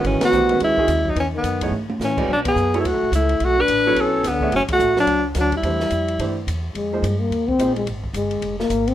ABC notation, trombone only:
X:1
M:4/4
L:1/16
Q:"Swing" 1/4=215
K:Bdor
V:1 name="Trombone" clef=bass
E,2 B,6 G,6 F,2 | E,2 ^D,6 z4 E,4 | F,2 B,4- B, G, A,4 A,4 | A,2 D6 C4 D,4 |
F,2 A,4 F,4 z2 F,2 =G,2- | =G,12 z4 | [K:Fm] A,6 B,4 C4 A,2 | z4 A,6 B,4 C2 |]